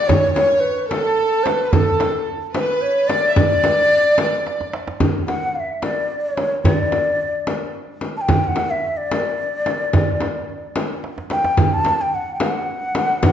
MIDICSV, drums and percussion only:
0, 0, Header, 1, 3, 480
1, 0, Start_track
1, 0, Tempo, 547445
1, 80, Time_signature, 6, 3, 24, 8
1, 11680, End_track
2, 0, Start_track
2, 0, Title_t, "Frame drum"
2, 81, Note_on_c, 9, 64, 88
2, 169, Note_off_c, 9, 64, 0
2, 317, Note_on_c, 9, 64, 72
2, 405, Note_off_c, 9, 64, 0
2, 798, Note_on_c, 9, 64, 76
2, 885, Note_off_c, 9, 64, 0
2, 1277, Note_on_c, 9, 64, 68
2, 1365, Note_off_c, 9, 64, 0
2, 1515, Note_on_c, 9, 64, 89
2, 1603, Note_off_c, 9, 64, 0
2, 1758, Note_on_c, 9, 64, 73
2, 1846, Note_off_c, 9, 64, 0
2, 2231, Note_on_c, 9, 64, 82
2, 2319, Note_off_c, 9, 64, 0
2, 2713, Note_on_c, 9, 64, 70
2, 2801, Note_off_c, 9, 64, 0
2, 2948, Note_on_c, 9, 64, 82
2, 3036, Note_off_c, 9, 64, 0
2, 3189, Note_on_c, 9, 64, 77
2, 3276, Note_off_c, 9, 64, 0
2, 3664, Note_on_c, 9, 64, 80
2, 3751, Note_off_c, 9, 64, 0
2, 4387, Note_on_c, 9, 64, 87
2, 4474, Note_off_c, 9, 64, 0
2, 4631, Note_on_c, 9, 64, 63
2, 4719, Note_off_c, 9, 64, 0
2, 5108, Note_on_c, 9, 64, 69
2, 5196, Note_off_c, 9, 64, 0
2, 5588, Note_on_c, 9, 64, 59
2, 5676, Note_off_c, 9, 64, 0
2, 5831, Note_on_c, 9, 64, 99
2, 5918, Note_off_c, 9, 64, 0
2, 6069, Note_on_c, 9, 64, 63
2, 6157, Note_off_c, 9, 64, 0
2, 6550, Note_on_c, 9, 64, 74
2, 6637, Note_off_c, 9, 64, 0
2, 7025, Note_on_c, 9, 64, 65
2, 7112, Note_off_c, 9, 64, 0
2, 7264, Note_on_c, 9, 64, 88
2, 7352, Note_off_c, 9, 64, 0
2, 7502, Note_on_c, 9, 64, 68
2, 7590, Note_off_c, 9, 64, 0
2, 7991, Note_on_c, 9, 64, 80
2, 8079, Note_off_c, 9, 64, 0
2, 8470, Note_on_c, 9, 64, 64
2, 8558, Note_off_c, 9, 64, 0
2, 8709, Note_on_c, 9, 64, 86
2, 8797, Note_off_c, 9, 64, 0
2, 8947, Note_on_c, 9, 64, 66
2, 9035, Note_off_c, 9, 64, 0
2, 9431, Note_on_c, 9, 64, 78
2, 9519, Note_off_c, 9, 64, 0
2, 9908, Note_on_c, 9, 64, 65
2, 9995, Note_off_c, 9, 64, 0
2, 10147, Note_on_c, 9, 64, 87
2, 10235, Note_off_c, 9, 64, 0
2, 10387, Note_on_c, 9, 64, 73
2, 10475, Note_off_c, 9, 64, 0
2, 10873, Note_on_c, 9, 64, 81
2, 10960, Note_off_c, 9, 64, 0
2, 11353, Note_on_c, 9, 64, 73
2, 11441, Note_off_c, 9, 64, 0
2, 11597, Note_on_c, 9, 64, 106
2, 11680, Note_off_c, 9, 64, 0
2, 11680, End_track
3, 0, Start_track
3, 0, Title_t, "Tombak"
3, 83, Note_on_c, 9, 64, 91
3, 170, Note_off_c, 9, 64, 0
3, 327, Note_on_c, 9, 63, 62
3, 415, Note_off_c, 9, 63, 0
3, 804, Note_on_c, 9, 63, 70
3, 892, Note_off_c, 9, 63, 0
3, 1287, Note_on_c, 9, 63, 75
3, 1374, Note_off_c, 9, 63, 0
3, 1515, Note_on_c, 9, 64, 100
3, 1602, Note_off_c, 9, 64, 0
3, 1753, Note_on_c, 9, 63, 73
3, 1841, Note_off_c, 9, 63, 0
3, 2237, Note_on_c, 9, 63, 69
3, 2325, Note_off_c, 9, 63, 0
3, 2717, Note_on_c, 9, 63, 79
3, 2805, Note_off_c, 9, 63, 0
3, 2954, Note_on_c, 9, 64, 90
3, 3042, Note_off_c, 9, 64, 0
3, 3197, Note_on_c, 9, 63, 65
3, 3284, Note_off_c, 9, 63, 0
3, 3432, Note_on_c, 9, 62, 29
3, 3520, Note_off_c, 9, 62, 0
3, 3670, Note_on_c, 9, 63, 67
3, 3758, Note_off_c, 9, 63, 0
3, 3916, Note_on_c, 9, 63, 56
3, 4003, Note_off_c, 9, 63, 0
3, 4039, Note_on_c, 9, 62, 68
3, 4126, Note_off_c, 9, 62, 0
3, 4151, Note_on_c, 9, 63, 77
3, 4239, Note_off_c, 9, 63, 0
3, 4274, Note_on_c, 9, 62, 87
3, 4362, Note_off_c, 9, 62, 0
3, 4388, Note_on_c, 9, 64, 81
3, 4476, Note_off_c, 9, 64, 0
3, 4635, Note_on_c, 9, 63, 56
3, 4723, Note_off_c, 9, 63, 0
3, 4872, Note_on_c, 9, 62, 23
3, 4959, Note_off_c, 9, 62, 0
3, 5106, Note_on_c, 9, 63, 61
3, 5193, Note_off_c, 9, 63, 0
3, 5590, Note_on_c, 9, 63, 69
3, 5677, Note_off_c, 9, 63, 0
3, 5826, Note_on_c, 9, 64, 76
3, 5913, Note_off_c, 9, 64, 0
3, 6069, Note_on_c, 9, 63, 70
3, 6157, Note_off_c, 9, 63, 0
3, 6306, Note_on_c, 9, 62, 21
3, 6394, Note_off_c, 9, 62, 0
3, 6551, Note_on_c, 9, 63, 73
3, 6639, Note_off_c, 9, 63, 0
3, 7273, Note_on_c, 9, 64, 83
3, 7360, Note_off_c, 9, 64, 0
3, 7510, Note_on_c, 9, 63, 66
3, 7598, Note_off_c, 9, 63, 0
3, 7756, Note_on_c, 9, 62, 26
3, 7844, Note_off_c, 9, 62, 0
3, 7994, Note_on_c, 9, 63, 65
3, 8082, Note_off_c, 9, 63, 0
3, 8476, Note_on_c, 9, 63, 68
3, 8564, Note_off_c, 9, 63, 0
3, 8714, Note_on_c, 9, 64, 93
3, 8801, Note_off_c, 9, 64, 0
3, 8958, Note_on_c, 9, 63, 66
3, 9046, Note_off_c, 9, 63, 0
3, 9202, Note_on_c, 9, 62, 27
3, 9289, Note_off_c, 9, 62, 0
3, 9442, Note_on_c, 9, 63, 70
3, 9530, Note_off_c, 9, 63, 0
3, 9679, Note_on_c, 9, 63, 51
3, 9767, Note_off_c, 9, 63, 0
3, 9801, Note_on_c, 9, 62, 67
3, 9888, Note_off_c, 9, 62, 0
3, 9917, Note_on_c, 9, 63, 73
3, 10005, Note_off_c, 9, 63, 0
3, 10034, Note_on_c, 9, 62, 85
3, 10122, Note_off_c, 9, 62, 0
3, 10155, Note_on_c, 9, 64, 97
3, 10242, Note_off_c, 9, 64, 0
3, 10401, Note_on_c, 9, 63, 68
3, 10488, Note_off_c, 9, 63, 0
3, 10641, Note_on_c, 9, 62, 27
3, 10728, Note_off_c, 9, 62, 0
3, 10882, Note_on_c, 9, 63, 70
3, 10970, Note_off_c, 9, 63, 0
3, 11354, Note_on_c, 9, 63, 69
3, 11442, Note_off_c, 9, 63, 0
3, 11599, Note_on_c, 9, 64, 86
3, 11680, Note_off_c, 9, 64, 0
3, 11680, End_track
0, 0, End_of_file